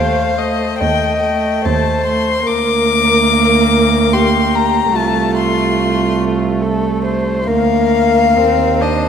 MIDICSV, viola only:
0, 0, Header, 1, 2, 480
1, 0, Start_track
1, 0, Key_signature, -2, "major"
1, 0, Tempo, 847458
1, 931, Tempo, 828729
1, 1414, Time_signature, 3, 2, 24, 8
1, 3811, Tempo, 882353
1, 5155, End_track
2, 0, Start_track
2, 0, Title_t, "Viola"
2, 0, Program_c, 0, 41
2, 0, Note_on_c, 0, 57, 35
2, 213, Note_off_c, 0, 57, 0
2, 224, Note_on_c, 0, 57, 32
2, 692, Note_off_c, 0, 57, 0
2, 705, Note_on_c, 0, 57, 36
2, 1167, Note_off_c, 0, 57, 0
2, 1179, Note_on_c, 0, 57, 36
2, 1413, Note_off_c, 0, 57, 0
2, 1420, Note_on_c, 0, 58, 47
2, 2826, Note_off_c, 0, 58, 0
2, 2848, Note_on_c, 0, 57, 39
2, 4260, Note_off_c, 0, 57, 0
2, 4282, Note_on_c, 0, 58, 41
2, 4765, Note_on_c, 0, 60, 37
2, 4773, Note_off_c, 0, 58, 0
2, 5007, Note_on_c, 0, 62, 31
2, 5015, Note_off_c, 0, 60, 0
2, 5155, Note_off_c, 0, 62, 0
2, 5155, End_track
0, 0, End_of_file